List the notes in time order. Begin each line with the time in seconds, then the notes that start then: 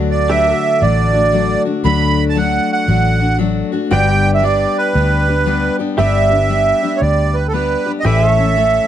Already playing: D2 D3 F#3 A3 D4 F#4
0.11 D5
0.29 F#3 A3 D4 F#4 G4 B4 D5 E5
0.50 F#4
0.56 A4
0.81 A1 F#3 A3 D4 F#4 D5
1.13 A3 D4 F#4
1.32 F#3 A3 D4 F#4
1.65 A3 D4 F#4
1.84 D2 D3 F#3 A3 D4 F#4 B5
2.29 A5
2.35 F#3 A3 D4 F#4 F#5
2.72 F#5
2.87 A1 F#3 A3 D4 F#4
3.20 A3 D4 F#4
3.38 F#3 A3 D4 F#4
3.72 A3 D4 F#4
3.91 G1 G2 D3 G3 B3 D4 F#4 G4 B4 D5 G5
4.11 G4
4.34 E5
4.42 G3 B3 D4 G4 D5
4.78 B4
4.94 D2 G3 B3 D4 G4
5.27 G3 B3 D4 G4
5.46 G3 B3 D4 G4
5.79 G3 B3 D4 G4
5.98 G1 G2 D3 G3 B3 D4 G4 B4 D5 E5
6.30 G3 B3 D4 G4
6.49 G3 B3 D4 G4
6.82 G3 B3 D4 G4
6.97 C#5
7.01 D2 D5
7.34 B4
7.48 A4
7.53 G3 B3 D4 G4 B4
7.86 G3 B3 D4 G4
8.00 D#5
8.05 A1 A2 E3 A3 C#4 G4 A4 B4 D5 E5
8.30 A4 C#5 E5
8.37 A3 C#4 A4
8.56 E3 A3 C#4 A4